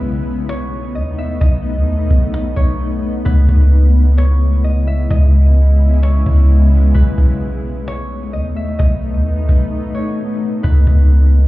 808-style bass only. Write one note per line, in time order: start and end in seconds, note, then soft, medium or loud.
0.00 0.97 B1 loud
0.95 1.39 D#2 medium
1.41 1.77 B1 loud
1.76 2.09 D#2 loud
2.10 2.55 B1 loud
2.57 3.23 B1 loud
3.26 3.48 C#2 loud
3.49 5.06 C#2 loud
5.10 6.22 C#2 loud
6.26 6.92 C#2 loud
6.95 7.17 B1 loud
7.18 8.35 B1 loud
8.33 8.77 D#2 medium
8.80 9.16 B1 loud
9.14 9.47 D#2 loud
9.49 9.71 B1 loud
10.64 10.86 C#2 loud
10.87 11.48 C#2 loud